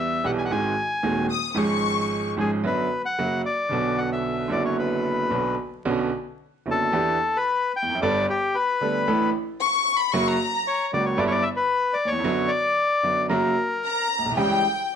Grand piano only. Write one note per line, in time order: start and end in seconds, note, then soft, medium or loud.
0.00 0.19 E2 medium
0.00 0.19 E3 medium
0.00 0.19 G3 medium
0.00 0.19 B3 medium
0.00 0.20 G4 medium
0.24 0.46 B1 medium
0.24 0.46 B2 medium
0.24 0.46 E3 medium
0.24 0.46 G3 medium
0.24 0.46 B3 medium
0.24 0.47 G4 medium
0.50 0.73 G#1 medium
0.50 0.73 G#2 medium
0.50 0.73 D#3 medium
0.50 0.73 G#3 medium
0.50 0.73 C4 medium
0.50 0.73 F#4 medium
1.03 1.26 D#1 medium
1.03 1.26 D#2 medium
1.03 1.26 D#3 medium
1.03 1.26 G#3 medium
1.03 1.26 C4 medium
1.03 1.26 F#4 medium
1.54 2.32 G#1 medium
1.54 2.33 G#2 medium
1.54 2.32 F3 medium
1.54 2.32 G#3 medium
1.54 2.33 C#4 medium
1.54 2.33 G#4 medium
2.37 2.59 G#1 medium
2.37 2.60 G#2 medium
2.37 2.59 F3 medium
2.37 2.59 G#3 medium
2.37 2.60 C#4 medium
2.37 2.60 G#4 medium
2.64 2.86 F#2 medium
2.64 2.86 D3 medium
2.64 2.86 F#3 medium
2.64 2.86 B3 medium
2.64 2.87 F#4 medium
3.19 3.40 F#2 medium
3.19 3.40 C#3 medium
3.19 3.40 F#3 medium
3.19 3.40 A#3 medium
3.19 3.41 F#4 medium
3.69 4.46 B1 medium
3.69 4.46 B2 medium
3.69 4.45 D3 medium
3.69 4.46 F#3 medium
3.69 4.47 B3 medium
3.69 4.47 F#4 medium
4.48 5.27 F#1 medium
4.48 5.27 F#2 medium
4.48 5.26 D3 medium
4.48 5.27 F#3 medium
4.48 5.28 B3 medium
4.48 5.28 F#4 medium
5.30 5.54 B1 medium
5.30 5.54 B2 medium
5.30 5.53 D3 medium
5.30 5.53 F#3 medium
5.30 5.54 B3 medium
5.30 5.54 F#4 medium
5.85 6.08 B1 medium
5.85 6.08 B2 medium
5.85 6.08 D3 medium
5.85 6.08 B3 medium
5.85 6.08 C#4 medium
5.85 6.08 F#4 medium
6.66 6.88 F#1 medium
6.66 6.88 F#2 medium
6.66 6.89 D3 medium
6.66 6.89 B3 soft
6.66 6.89 C#4 medium
6.66 6.89 F#4 medium
6.92 7.15 E2 medium
6.92 7.15 E3 medium
6.92 7.15 B3 medium
6.92 7.15 D4 medium
6.92 7.15 G4 medium
7.82 7.88 E2 medium
7.89 7.95 F2 medium
7.95 8.01 F#2 medium
8.02 8.24 G1 loud
8.02 8.24 G2 loud
8.02 8.24 G3 medium
8.02 8.24 B3 medium
8.02 8.24 D4 medium
8.02 8.24 A4 medium
8.81 9.03 D2 medium
8.81 9.03 D3 medium
8.81 9.03 G3 medium
8.81 9.03 B3 soft
8.81 9.03 D4 medium
8.81 9.03 A4 medium
9.07 9.29 A1 loud
9.07 9.29 A2 loud
9.07 9.29 E3 medium
9.07 9.29 A3 medium
9.07 9.29 D4 medium
9.07 9.29 A4 medium
10.13 10.36 F#2 loud
10.13 10.35 C#3 medium
10.13 10.36 F#3 loud
10.13 10.36 A#3 medium
10.13 10.36 F#4 loud
10.93 11.15 C#2 medium
10.93 11.15 C#3 medium
10.93 11.15 F#3 soft
10.93 11.15 A#3 medium
10.93 11.15 F#4 medium
11.17 11.41 G1 medium
11.17 11.41 G2 loud
11.17 11.40 D3 medium
11.17 11.41 G3 medium
11.17 11.41 B3 medium
11.17 11.41 E4 loud
12.05 12.12 D#2 medium
12.12 12.19 E2 medium
12.19 12.25 F2 medium
12.24 12.47 F#2 medium
12.24 12.47 D3 medium
12.24 12.48 F#3 loud
12.24 12.47 B3 medium
12.24 12.47 F#4 medium
13.03 13.27 F#2 medium
13.03 13.27 D3 soft
13.03 13.27 F#3 medium
13.03 13.27 B3 soft
13.03 13.27 F#4 medium
13.29 13.54 F#2 medium
13.29 13.54 C#3 medium
13.29 13.54 F#3 medium
13.29 13.54 A#3 medium
13.29 13.54 F#4 medium
14.19 14.26 A#1 medium
14.26 14.33 B1 medium
14.32 14.39 C2 medium
14.37 14.61 C#2 medium
14.37 14.61 C#3 medium
14.37 14.61 E3 medium
14.37 14.61 G3 medium
14.37 14.61 C#4 medium
14.37 14.61 G4 medium